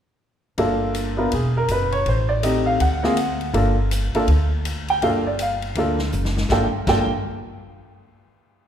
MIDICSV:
0, 0, Header, 1, 5, 480
1, 0, Start_track
1, 0, Key_signature, -2, "minor"
1, 0, Tempo, 370370
1, 757, Time_signature, 4, 2, 24, 8
1, 11245, End_track
2, 0, Start_track
2, 0, Title_t, "Upright piano"
2, 0, Program_c, 0, 0
2, 747, Note_on_c, 0, 58, 58
2, 753, Note_on_c, 0, 62, 51
2, 764, Note_on_c, 0, 69, 61
2, 766, Note_on_c, 0, 65, 52
2, 1476, Note_off_c, 0, 58, 0
2, 1479, Note_off_c, 0, 62, 0
2, 1484, Note_off_c, 0, 69, 0
2, 1485, Note_off_c, 0, 65, 0
2, 1516, Note_on_c, 0, 59, 53
2, 1521, Note_on_c, 0, 62, 46
2, 1533, Note_on_c, 0, 65, 46
2, 1534, Note_on_c, 0, 70, 55
2, 1689, Note_off_c, 0, 59, 0
2, 1691, Note_off_c, 0, 62, 0
2, 1697, Note_off_c, 0, 65, 0
2, 1698, Note_off_c, 0, 70, 0
2, 1735, Note_on_c, 0, 68, 57
2, 2021, Note_off_c, 0, 68, 0
2, 2037, Note_on_c, 0, 70, 73
2, 2202, Note_off_c, 0, 70, 0
2, 2223, Note_on_c, 0, 71, 66
2, 2495, Note_on_c, 0, 73, 82
2, 2505, Note_off_c, 0, 71, 0
2, 2671, Note_off_c, 0, 73, 0
2, 2703, Note_on_c, 0, 72, 65
2, 2966, Note_on_c, 0, 74, 78
2, 2986, Note_off_c, 0, 72, 0
2, 3146, Note_off_c, 0, 74, 0
2, 3147, Note_on_c, 0, 57, 51
2, 3154, Note_on_c, 0, 60, 47
2, 3155, Note_on_c, 0, 75, 64
2, 3168, Note_on_c, 0, 67, 53
2, 3171, Note_on_c, 0, 63, 47
2, 3449, Note_on_c, 0, 77, 71
2, 3451, Note_off_c, 0, 75, 0
2, 3628, Note_off_c, 0, 77, 0
2, 3633, Note_off_c, 0, 57, 0
2, 3637, Note_off_c, 0, 60, 0
2, 3641, Note_on_c, 0, 78, 69
2, 3644, Note_off_c, 0, 67, 0
2, 3646, Note_off_c, 0, 63, 0
2, 3928, Note_on_c, 0, 58, 60
2, 3935, Note_on_c, 0, 60, 59
2, 3941, Note_on_c, 0, 65, 56
2, 3948, Note_on_c, 0, 68, 72
2, 4095, Note_off_c, 0, 58, 0
2, 4098, Note_off_c, 0, 60, 0
2, 4101, Note_off_c, 0, 65, 0
2, 4105, Note_off_c, 0, 68, 0
2, 4548, Note_off_c, 0, 78, 0
2, 4579, Note_on_c, 0, 58, 60
2, 4583, Note_on_c, 0, 62, 52
2, 4589, Note_on_c, 0, 65, 52
2, 4596, Note_on_c, 0, 69, 64
2, 4861, Note_off_c, 0, 58, 0
2, 4863, Note_off_c, 0, 62, 0
2, 4866, Note_off_c, 0, 65, 0
2, 4870, Note_off_c, 0, 69, 0
2, 5373, Note_on_c, 0, 62, 54
2, 5376, Note_on_c, 0, 58, 63
2, 5386, Note_on_c, 0, 65, 60
2, 5393, Note_on_c, 0, 69, 70
2, 5536, Note_off_c, 0, 62, 0
2, 5537, Note_off_c, 0, 58, 0
2, 5542, Note_off_c, 0, 65, 0
2, 5546, Note_off_c, 0, 69, 0
2, 6351, Note_on_c, 0, 79, 77
2, 6509, Note_on_c, 0, 58, 57
2, 6516, Note_on_c, 0, 62, 53
2, 6516, Note_on_c, 0, 77, 67
2, 6517, Note_off_c, 0, 79, 0
2, 6517, Note_on_c, 0, 65, 49
2, 6529, Note_on_c, 0, 69, 59
2, 6784, Note_off_c, 0, 58, 0
2, 6788, Note_off_c, 0, 62, 0
2, 6788, Note_off_c, 0, 65, 0
2, 6794, Note_off_c, 0, 69, 0
2, 6809, Note_off_c, 0, 77, 0
2, 6828, Note_on_c, 0, 74, 63
2, 6995, Note_off_c, 0, 74, 0
2, 7022, Note_on_c, 0, 77, 63
2, 7472, Note_on_c, 0, 58, 53
2, 7482, Note_on_c, 0, 62, 47
2, 7490, Note_on_c, 0, 65, 52
2, 7502, Note_on_c, 0, 69, 59
2, 7738, Note_off_c, 0, 77, 0
2, 7745, Note_off_c, 0, 58, 0
2, 7750, Note_off_c, 0, 62, 0
2, 7754, Note_off_c, 0, 65, 0
2, 7760, Note_off_c, 0, 69, 0
2, 8432, Note_on_c, 0, 58, 61
2, 8433, Note_on_c, 0, 62, 56
2, 8440, Note_on_c, 0, 65, 56
2, 8440, Note_on_c, 0, 69, 68
2, 8448, Note_on_c, 0, 79, 69
2, 8610, Note_off_c, 0, 79, 0
2, 8614, Note_off_c, 0, 58, 0
2, 8614, Note_off_c, 0, 62, 0
2, 8618, Note_off_c, 0, 65, 0
2, 8618, Note_off_c, 0, 69, 0
2, 8911, Note_on_c, 0, 58, 61
2, 8913, Note_on_c, 0, 62, 56
2, 8919, Note_on_c, 0, 65, 56
2, 8924, Note_on_c, 0, 69, 65
2, 8932, Note_on_c, 0, 79, 74
2, 9184, Note_off_c, 0, 58, 0
2, 9185, Note_off_c, 0, 62, 0
2, 9188, Note_off_c, 0, 65, 0
2, 9191, Note_off_c, 0, 69, 0
2, 9205, Note_off_c, 0, 79, 0
2, 11245, End_track
3, 0, Start_track
3, 0, Title_t, "Upright bass"
3, 0, Program_c, 1, 32
3, 750, Note_on_c, 1, 31, 70
3, 1668, Note_off_c, 1, 31, 0
3, 1717, Note_on_c, 1, 28, 76
3, 2165, Note_off_c, 1, 28, 0
3, 2188, Note_on_c, 1, 30, 66
3, 2640, Note_off_c, 1, 30, 0
3, 2668, Note_on_c, 1, 33, 72
3, 3586, Note_off_c, 1, 33, 0
3, 3632, Note_on_c, 1, 38, 79
3, 4547, Note_off_c, 1, 38, 0
3, 4583, Note_on_c, 1, 31, 76
3, 5320, Note_off_c, 1, 31, 0
3, 5541, Note_on_c, 1, 38, 80
3, 6459, Note_off_c, 1, 38, 0
3, 6510, Note_on_c, 1, 31, 70
3, 7423, Note_off_c, 1, 31, 0
3, 7458, Note_on_c, 1, 38, 81
3, 7911, Note_off_c, 1, 38, 0
3, 7945, Note_on_c, 1, 30, 64
3, 8395, Note_off_c, 1, 30, 0
3, 8422, Note_on_c, 1, 31, 73
3, 8595, Note_off_c, 1, 31, 0
3, 8906, Note_on_c, 1, 31, 82
3, 9190, Note_off_c, 1, 31, 0
3, 11245, End_track
4, 0, Start_track
4, 0, Title_t, "Muted upright bass strokes"
4, 5366, Note_on_c, 9, 29, 35
4, 5496, Note_off_c, 9, 29, 0
4, 11245, End_track
5, 0, Start_track
5, 0, Title_t, "Drums"
5, 748, Note_on_c, 9, 51, 47
5, 878, Note_off_c, 9, 51, 0
5, 1225, Note_on_c, 9, 44, 57
5, 1225, Note_on_c, 9, 51, 54
5, 1355, Note_off_c, 9, 44, 0
5, 1355, Note_off_c, 9, 51, 0
5, 1706, Note_on_c, 9, 51, 57
5, 1835, Note_off_c, 9, 51, 0
5, 2183, Note_on_c, 9, 44, 55
5, 2183, Note_on_c, 9, 51, 54
5, 2312, Note_off_c, 9, 44, 0
5, 2312, Note_off_c, 9, 51, 0
5, 2492, Note_on_c, 9, 51, 35
5, 2622, Note_off_c, 9, 51, 0
5, 2668, Note_on_c, 9, 51, 46
5, 2797, Note_off_c, 9, 51, 0
5, 3151, Note_on_c, 9, 44, 48
5, 3151, Note_on_c, 9, 51, 64
5, 3280, Note_off_c, 9, 44, 0
5, 3280, Note_off_c, 9, 51, 0
5, 3630, Note_on_c, 9, 51, 54
5, 3760, Note_off_c, 9, 51, 0
5, 3934, Note_on_c, 9, 38, 43
5, 4064, Note_off_c, 9, 38, 0
5, 4105, Note_on_c, 9, 44, 43
5, 4105, Note_on_c, 9, 51, 61
5, 4235, Note_off_c, 9, 44, 0
5, 4235, Note_off_c, 9, 51, 0
5, 4416, Note_on_c, 9, 51, 37
5, 4545, Note_off_c, 9, 51, 0
5, 4590, Note_on_c, 9, 51, 50
5, 4720, Note_off_c, 9, 51, 0
5, 5069, Note_on_c, 9, 44, 58
5, 5069, Note_on_c, 9, 51, 58
5, 5199, Note_off_c, 9, 44, 0
5, 5199, Note_off_c, 9, 51, 0
5, 5373, Note_on_c, 9, 51, 41
5, 5503, Note_off_c, 9, 51, 0
5, 5543, Note_on_c, 9, 51, 53
5, 5673, Note_off_c, 9, 51, 0
5, 6028, Note_on_c, 9, 44, 47
5, 6028, Note_on_c, 9, 51, 63
5, 6158, Note_off_c, 9, 44, 0
5, 6158, Note_off_c, 9, 51, 0
5, 6329, Note_on_c, 9, 51, 37
5, 6459, Note_off_c, 9, 51, 0
5, 6506, Note_on_c, 9, 51, 50
5, 6636, Note_off_c, 9, 51, 0
5, 6983, Note_on_c, 9, 44, 52
5, 6983, Note_on_c, 9, 51, 63
5, 7112, Note_off_c, 9, 44, 0
5, 7112, Note_off_c, 9, 51, 0
5, 7286, Note_on_c, 9, 51, 41
5, 7416, Note_off_c, 9, 51, 0
5, 7456, Note_on_c, 9, 51, 57
5, 7585, Note_off_c, 9, 51, 0
5, 7757, Note_on_c, 9, 38, 46
5, 7887, Note_off_c, 9, 38, 0
5, 7934, Note_on_c, 9, 44, 41
5, 8064, Note_off_c, 9, 44, 0
5, 8098, Note_on_c, 9, 38, 52
5, 8228, Note_off_c, 9, 38, 0
5, 8259, Note_on_c, 9, 38, 61
5, 8388, Note_off_c, 9, 38, 0
5, 8411, Note_on_c, 9, 38, 63
5, 8424, Note_on_c, 9, 36, 69
5, 8540, Note_off_c, 9, 38, 0
5, 8553, Note_off_c, 9, 36, 0
5, 8904, Note_on_c, 9, 38, 69
5, 8904, Note_on_c, 9, 49, 76
5, 8905, Note_on_c, 9, 36, 81
5, 9033, Note_off_c, 9, 38, 0
5, 9033, Note_off_c, 9, 49, 0
5, 9034, Note_off_c, 9, 36, 0
5, 11245, End_track
0, 0, End_of_file